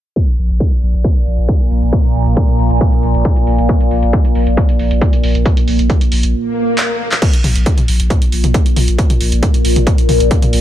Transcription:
0.16 A#2, kick, closed hi-hat
0.28 closed hi-hat
0.38 A#1, open hi-hat
0.50 A#1, closed hi-hat
0.60 kick, closed hi-hat
0.72 closed hi-hat
0.82 A#1, open hi-hat
0.94 A#1, closed hi-hat
1.04 kick, closed hi-hat
1.16 closed hi-hat
1.26 A#1, open hi-hat
1.38 A#1, closed hi-hat
1.48 kick, closed hi-hat
1.60 closed hi-hat
1.71 A#1, open hi-hat
1.82 A#1, closed hi-hat
1.93 kick, closed hi-hat
2.04 closed hi-hat
2.15 A#1, open hi-hat
2.26 A#1, closed hi-hat
2.37 kick, closed hi-hat
2.48 closed hi-hat
2.59 A#1, open hi-hat
2.70 A#1, closed hi-hat
2.81 kick, closed hi-hat
2.92 closed hi-hat
3.03 A#1, open hi-hat
3.14 A#1, closed hi-hat
3.25 kick, closed hi-hat
3.36 closed hi-hat
3.47 A#1, open hi-hat
3.58 A#1, closed hi-hat
3.69 kick, closed hi-hat
3.81 closed hi-hat
3.91 A#1, open hi-hat
4.03 A#1, closed hi-hat
4.13 kick, closed hi-hat
4.25 closed hi-hat
4.35 A#1, open hi-hat
4.47 A#1, closed hi-hat
4.57 kick, closed hi-hat
4.69 closed hi-hat
4.79 A#1, open hi-hat
4.91 A#1, closed hi-hat
5.01 kick, closed hi-hat
5.13 closed hi-hat
5.23 A#1, open hi-hat
5.35 A#1, closed hi-hat
5.46 kick, closed hi-hat
5.57 closed hi-hat
5.68 A#1, open hi-hat
5.79 A#1, closed hi-hat
5.90 kick, closed hi-hat
6.01 closed hi-hat
6.12 A#1, open hi-hat
6.23 A#1, closed hi-hat
6.34 swell
6.78 clap
7.11 clap
7.22 A#2, kick, closed hi-hat, crash
7.33 closed hi-hat
7.44 A#1, open hi-hat, mid tom
7.56 A#1, closed hi-hat
7.66 kick, closed hi-hat
7.78 closed hi-hat, mid tom
7.88 A#1, open hi-hat
8.00 A#1, closed hi-hat
8.10 kick, closed hi-hat, mid tom
8.22 closed hi-hat
8.32 A#1, open hi-hat
8.44 A#1, closed hi-hat, mid tom
8.54 kick, closed hi-hat
8.66 closed hi-hat
8.76 A#1, open hi-hat, mid tom
8.88 A#1, closed hi-hat
8.98 kick, closed hi-hat
9.10 closed hi-hat, mid tom
9.21 A#1, open hi-hat
9.32 A#1, closed hi-hat
9.43 kick, closed hi-hat, mid tom
9.54 closed hi-hat
9.65 A#1, open hi-hat
9.76 A#1, closed hi-hat, mid tom
9.87 kick, closed hi-hat
9.98 closed hi-hat
10.09 A#1, open hi-hat, mid tom
10.20 A#1, closed hi-hat
10.31 kick, closed hi-hat
10.42 closed hi-hat, mid tom
10.53 A#1, open hi-hat

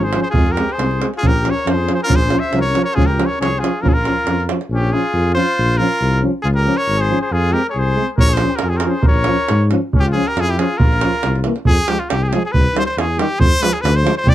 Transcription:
Already playing: G#1
0.02 G#4 C5
0.13 F3 C#4, davul high
0.22 G#4 C5
0.30 F4 G#4, davul low
0.36 F2 G#3 C4
0.46 davul high
0.52 G4 A#4
0.57 G#3 C4, davul high
0.69 C5, davul high
0.74 C2 G#4
0.79 G#3 C4, davul high
0.91 davul high
0.99 G#3 C4, davul high
1.14 F4, davul high
1.18 C#4 G#4
1.23 A#1 F3, davul low
1.27 G4 A#4
1.36 davul high
1.44 F3 C#4, davul high
1.50 A#4 C#5
1.58 davul high
1.65 F2 F3 C#4, davul high
1.70 C5
1.75 G#4
1.86 C#4, davul high
1.90 F3
1.94 G#4 C5
2.03 C#4 F4 A#4
2.09 A#1 F3, davul low
2.15 G#4 C5
2.22 davul high
2.28 F3 C#4, davul high
2.36 C5 E5
2.44 davul high
2.51 C2 F3 C#4, davul high
2.58 A#4 C#5
2.71 F3 C#4
2.75 davul high
2.82 A#4 C#5
2.94 C#2 F3 C#4 F4 G#4, davul low
3.06 G4 A#4, davul high
3.17 F3 C#4, davul high
3.26 A#4 C#5
3.33 davul high
3.40 C2 F3 C#4 G#4 C#5, davul high
3.59 F3 C#4 F4 G#4
3.64 davul high
3.81 A#1 F3 C#4 F4 A#4
3.86 F4 G#4, davul low
3.94 F4 A#4, davul high
4.05 F3 C#4, davul high
4.26 F2 F3 C#4, davul high
4.40 davul high
4.49 F3 C#4, davul high
4.61 davul high
4.70 A#1 C#4
4.75 G4
4.92 F3 C#4 F4 G#4
5.13 F2
5.34 F3 C#4 F4 C5
5.58 A#1
5.77 F3 C#4 F4 A#4
6.01 C2
6.22 F3 C#4
6.42 C#2 F4 G#4
6.55 G4 A#4
6.65 F3 C#4
6.77 A#4 C#5
6.88 G#1
6.98 G#4 C5
7.09 F3 C#4
7.22 G#4 C5
7.31 F2 F4 G#4
7.51 G#3 C4 G4 A#4
7.65 A#4
7.69 G#4 C#5
7.75 C2 C5
7.95 G#3 C4
8.16 A#1 A#4 C#5, davul low
8.29 G#4, davul high
8.34 C5, davul high
8.39 F3 C#4
8.49 G4, davul high
8.56 F4 A#4, davul high
8.63 F2 G#4
8.69 G4 G#4
8.75 A#4 C5
8.80 F3 G#4, davul high
8.86 C#4 C5
9.02 A#4, davul low
9.06 A#1 C#5
9.14 davul high
9.24 F3 C#4, davul high
9.37 davul high
9.48 G#2, davul high
9.69 F3 C#4, davul high
9.93 C#2 C#4, davul low
10.00 G4
10.05 F4, davul high
10.13 F3 C#4 G#4
10.28 G4 A#4, davul high
10.36 F2 F4, davul high
10.41 G#4
10.47 E4 G4
10.57 F3 C#4 F4 G#4, davul high
10.76 F4 A#4
10.80 A#1, davul low
10.92 davul high
11.00 F3 C#4, davul high
11.15 davul high
11.23 C2, davul high
11.35 davul high
11.43 E3 A#3, davul high
11.56 davul high
11.65 F2 G#4, davul low
11.87 F3 G#3 G4, davul high
12.00 F4, davul high
12.10 C2 G4, davul high
12.23 G#4
12.29 G#3 G4 G#4, davul high
12.33 F3
12.45 G#4
12.52 C2 B4, davul low
12.73 D#3 G3, davul high
12.78 C5
12.86 C5, davul high
12.97 E2 G#4, davul high
13.17 D#3 G3 G4, davul high
13.40 F2 C5, davul low
13.61 F3 G#3 B4, davul high
13.73 G#4, davul high
13.81 D2 B4, davul high
13.96 C5
14.03 F3 G#3, davul high
14.17 C5
14.24 C2 G4, davul low
14.29 D5

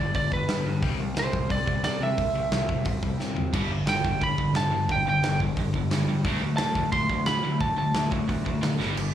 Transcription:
Already playing: D5
0.00 G1 G2 D3
0.14 G1 G2 D3 D5, kick, open hi-hat
0.31 G1 G2 D3 B4, kick
0.48 G2 D3, snare, open hi-hat
0.66 G2 D3
0.82 C2 C3 G3 C4, kick, open hi-hat
0.98 C2 C3 G3
1.15 C2 C3 G3, snare, open hi-hat
1.19 C5
1.32 C2 C3 G3, kick
1.49 C2 C3 G3 D5, kick, open hi-hat
1.66 C2 C3 G3, kick
1.83 C3 G3 D5, snare, open hi-hat
2.00 C3 G3 E5
2.18 C2 C3 G3, kick, open hi-hat
2.34 C2 C3 G3
2.52 C2 C3 G3, snare, open hi-hat
2.69 C2 C3 G3, kick
2.85 C2 C3 G3, kick, open hi-hat
3.03 C2 C3 G3, kick
3.18 C3 G3, snare
3.34 C3 G3, floor tom
3.53 G1 G2 D3 G3, kick, crash
3.69 G1 G2 D3
3.85 G1 G2 G5, snare, open hi-hat
3.89 D3
4.04 G1 G2 D3, kick
4.21 G1 G2 D3 B5, kick, open hi-hat
4.38 G1 G2 D3, kick
4.53 G2 D3 A5, snare, open hi-hat
4.70 G2 D3
4.89 G1 G2 D3 G5, kick, open hi-hat
5.05 G1 G2 D3
5.09 G5
5.21 G1 G2 D3, snare, open hi-hat
5.40 G1 G2 D3, kick
5.57 G1 G2 D3, kick, open hi-hat
5.73 G1 G2 D3, kick
5.91 G2 D3, snare, open hi-hat
6.07 G2 D3
6.24 D2 D3 F#3 A3 D4, kick, open hi-hat
6.41 D2 D3 F#3 A3
6.57 D2 D3 F#3 A3 A5, snare, open hi-hat
6.75 D2 D3 F#3 A3, kick
6.92 D2 D3 F#3 A3 C6, kick, open hi-hat
7.09 D2 D3 F#3 A3, kick
7.26 D3 F#3 A3 B5, snare, open hi-hat
7.43 D3 F#3 A3
7.60 D2 D3 F#3 A3 A5, kick, open hi-hat
7.77 D2 D3 F#3 A3 A5
7.94 D2 D3 F#3 A3, snare, open hi-hat
8.11 D2 D3 F#3 A3, kick
8.28 D2 D3 F#3 A3, kick, open hi-hat
8.45 D2 D3 F#3 A3, kick
8.62 D3 F#3 A3, snare, open hi-hat
8.79 G1 G2 D3 G3, snare
8.97 G1 G2 D3, crash

